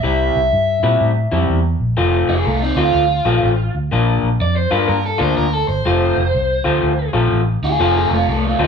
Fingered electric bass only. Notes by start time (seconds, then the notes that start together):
0.04 C2
0.36 C2
0.53 G2
0.83 A#2
1.01 A2
1.32 F2
1.50 E2
1.80 A#1
1.98 F1
2.29 F1
2.47 C2
2.76 D2
2.95 D2
3.25 A#1
3.43 A1
3.75 D2
3.92 A#1
4.23 A#1
4.40 F2
4.72 G2
4.89 G2
5.21 D2
5.38 D2
5.68 G1
5.86 F1
6.18 F1
6.35 C2
6.66 D2
6.83 D2
7.14 A#1
7.32 A1
7.62 D2
7.80 F1
8.11 F1
8.28 C2
8.59 D2